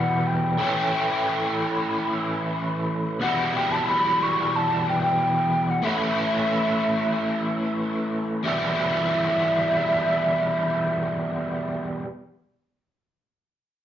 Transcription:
0, 0, Header, 1, 3, 480
1, 0, Start_track
1, 0, Tempo, 655022
1, 423, Time_signature, 4, 2, 24, 8
1, 10143, End_track
2, 0, Start_track
2, 0, Title_t, "Flute"
2, 0, Program_c, 0, 73
2, 0, Note_on_c, 0, 78, 74
2, 198, Note_on_c, 0, 79, 84
2, 209, Note_off_c, 0, 78, 0
2, 1634, Note_off_c, 0, 79, 0
2, 2355, Note_on_c, 0, 78, 77
2, 2610, Note_on_c, 0, 79, 81
2, 2621, Note_off_c, 0, 78, 0
2, 2724, Note_on_c, 0, 81, 88
2, 2735, Note_off_c, 0, 79, 0
2, 2836, Note_off_c, 0, 81, 0
2, 2846, Note_on_c, 0, 83, 95
2, 3098, Note_on_c, 0, 85, 89
2, 3109, Note_off_c, 0, 83, 0
2, 3339, Note_on_c, 0, 81, 91
2, 3350, Note_off_c, 0, 85, 0
2, 3564, Note_off_c, 0, 81, 0
2, 3581, Note_on_c, 0, 79, 78
2, 3678, Note_off_c, 0, 79, 0
2, 3681, Note_on_c, 0, 79, 82
2, 4181, Note_on_c, 0, 78, 72
2, 4192, Note_off_c, 0, 79, 0
2, 4288, Note_on_c, 0, 76, 72
2, 4299, Note_off_c, 0, 78, 0
2, 4314, Note_on_c, 0, 78, 53
2, 4325, Note_off_c, 0, 76, 0
2, 4378, Note_on_c, 0, 76, 79
2, 4389, Note_off_c, 0, 78, 0
2, 5711, Note_off_c, 0, 76, 0
2, 6187, Note_on_c, 0, 76, 87
2, 8661, Note_off_c, 0, 76, 0
2, 10143, End_track
3, 0, Start_track
3, 0, Title_t, "Overdriven electric guitar"
3, 0, Program_c, 1, 29
3, 0, Note_on_c, 1, 40, 65
3, 0, Note_on_c, 1, 47, 83
3, 0, Note_on_c, 1, 52, 76
3, 0, Note_on_c, 1, 55, 80
3, 0, Note_on_c, 1, 59, 77
3, 0, Note_on_c, 1, 64, 90
3, 409, Note_off_c, 1, 40, 0
3, 409, Note_off_c, 1, 47, 0
3, 416, Note_off_c, 1, 55, 0
3, 417, Note_off_c, 1, 59, 0
3, 422, Note_on_c, 1, 45, 76
3, 425, Note_off_c, 1, 52, 0
3, 428, Note_on_c, 1, 52, 81
3, 431, Note_on_c, 1, 57, 76
3, 434, Note_on_c, 1, 61, 77
3, 436, Note_off_c, 1, 64, 0
3, 439, Note_on_c, 1, 64, 90
3, 2333, Note_off_c, 1, 45, 0
3, 2337, Note_off_c, 1, 57, 0
3, 2339, Note_off_c, 1, 61, 0
3, 2347, Note_on_c, 1, 40, 79
3, 2350, Note_off_c, 1, 52, 0
3, 2352, Note_on_c, 1, 47, 77
3, 2353, Note_on_c, 1, 52, 77
3, 2363, Note_on_c, 1, 55, 72
3, 2364, Note_on_c, 1, 59, 78
3, 2367, Note_off_c, 1, 64, 0
3, 2370, Note_on_c, 1, 64, 85
3, 4254, Note_off_c, 1, 40, 0
3, 4257, Note_off_c, 1, 47, 0
3, 4262, Note_off_c, 1, 55, 0
3, 4263, Note_off_c, 1, 59, 0
3, 4265, Note_on_c, 1, 45, 69
3, 4270, Note_off_c, 1, 52, 0
3, 4272, Note_on_c, 1, 52, 78
3, 4275, Note_on_c, 1, 57, 74
3, 4279, Note_on_c, 1, 61, 75
3, 4288, Note_off_c, 1, 64, 0
3, 4291, Note_on_c, 1, 64, 80
3, 6171, Note_off_c, 1, 45, 0
3, 6174, Note_off_c, 1, 52, 0
3, 6176, Note_off_c, 1, 57, 0
3, 6178, Note_off_c, 1, 61, 0
3, 6178, Note_on_c, 1, 40, 71
3, 6184, Note_off_c, 1, 64, 0
3, 6186, Note_on_c, 1, 47, 71
3, 6192, Note_on_c, 1, 52, 81
3, 6194, Note_on_c, 1, 55, 86
3, 6205, Note_on_c, 1, 59, 81
3, 6208, Note_on_c, 1, 64, 84
3, 8812, Note_off_c, 1, 40, 0
3, 8821, Note_off_c, 1, 47, 0
3, 8827, Note_off_c, 1, 52, 0
3, 8829, Note_off_c, 1, 55, 0
3, 8839, Note_off_c, 1, 59, 0
3, 8843, Note_off_c, 1, 64, 0
3, 10143, End_track
0, 0, End_of_file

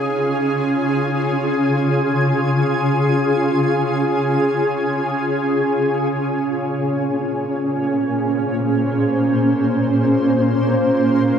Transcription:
0, 0, Header, 1, 2, 480
1, 0, Start_track
1, 0, Key_signature, -5, "minor"
1, 0, Tempo, 500000
1, 10932, End_track
2, 0, Start_track
2, 0, Title_t, "Ambient pad"
2, 0, Program_c, 0, 92
2, 0, Note_on_c, 0, 49, 75
2, 0, Note_on_c, 0, 61, 76
2, 0, Note_on_c, 0, 63, 65
2, 0, Note_on_c, 0, 65, 69
2, 0, Note_on_c, 0, 68, 85
2, 0, Note_on_c, 0, 77, 78
2, 0, Note_on_c, 0, 80, 65
2, 501, Note_off_c, 0, 63, 0
2, 1341, Note_off_c, 0, 77, 0
2, 6021, Note_on_c, 0, 46, 74
2, 6022, Note_off_c, 0, 49, 0
2, 6260, Note_on_c, 0, 58, 93
2, 7353, Note_on_c, 0, 72, 88
2, 8169, Note_off_c, 0, 65, 0
2, 9146, Note_off_c, 0, 80, 0
2, 10932, Note_off_c, 0, 46, 0
2, 10932, Note_off_c, 0, 58, 0
2, 10932, Note_off_c, 0, 61, 0
2, 10932, Note_off_c, 0, 68, 0
2, 10932, Note_off_c, 0, 72, 0
2, 10932, End_track
0, 0, End_of_file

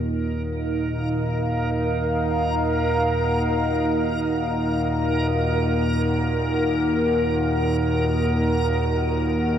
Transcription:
0, 0, Header, 1, 4, 480
1, 0, Start_track
1, 0, Key_signature, -6, "minor"
1, 0, Tempo, 500000
1, 9201, End_track
2, 0, Start_track
2, 0, Title_t, "Ambient pad"
2, 0, Program_c, 0, 92
2, 0, Note_on_c, 0, 63, 86
2, 0, Note_on_c, 0, 70, 80
2, 0, Note_on_c, 0, 77, 84
2, 0, Note_on_c, 0, 78, 71
2, 7331, Note_on_c, 0, 75, 96
2, 7605, Note_off_c, 0, 77, 0
2, 9201, Note_off_c, 0, 63, 0
2, 9201, Note_off_c, 0, 70, 0
2, 9201, Note_off_c, 0, 75, 0
2, 9201, Note_off_c, 0, 78, 0
2, 9201, End_track
3, 0, Start_track
3, 0, Title_t, "Synth texture"
3, 0, Program_c, 1, 99
3, 0, Note_on_c, 1, 70, 84
3, 9201, Note_off_c, 1, 70, 0
3, 9201, End_track
4, 0, Start_track
4, 0, Title_t, "Synth drone"
4, 0, Program_c, 2, 95
4, 0, Note_on_c, 2, 39, 72
4, 0, Note_on_c, 2, 46, 65
4, 9201, Note_off_c, 2, 39, 0
4, 9201, Note_off_c, 2, 46, 0
4, 9201, End_track
0, 0, End_of_file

